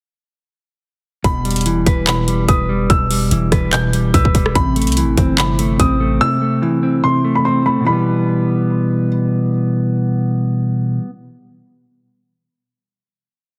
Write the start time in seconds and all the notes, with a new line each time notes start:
1.24 E1 B2 B5, kick, closed hi-hat
1.45 G3, closed hi-hat
1.51 closed hi-hat
1.56 closed hi-hat
1.61 closed hi-hat
1.66 E3, closed hi-hat
1.86 E1 B4, kick, closed hi-hat
2.07 B2 B5, clap, closed hi-hat
2.28 G3, closed hi-hat
2.48 E1 B4 D#6, kick, closed hi-hat
2.69 G3
2.90 E1 B2 E6, kick, closed hi-hat
3.11 G3, open hi-hat
3.31 E1 E3, closed hi-hat
3.52 E1 B4, kick, cross-stick, closed hi-hat
3.73 B2 G6, clap, closed hi-hat
3.93 G3, closed hi-hat
4.14 B1 B4 E6, kick, closed hi-hat
4.25 E1, kick
4.35 E1 G3, kick, closed hi-hat
4.46 cross-stick
4.55 A1 C3 B5, kick, closed hi-hat
4.76 A3, closed hi-hat
4.82 closed hi-hat
4.87 C2, closed hi-hat
4.92 closed hi-hat
4.97 E3, closed hi-hat
5.02 A1
5.18 G1 C4, kick, closed hi-hat
5.38 C3 B5, clap, closed hi-hat
5.59 A3, closed hi-hat
5.80 A1 C4 D#6, kick, closed hi-hat
6.00 A3
6.21 C3 E6
6.42 A3
6.62 E3
6.83 C4
7.04 C3 C6
7.24 A3
7.35 B5
7.45 C4 C6
7.66 A3 B5
7.80 B2
7.84 E3 B5
7.88 G3 B3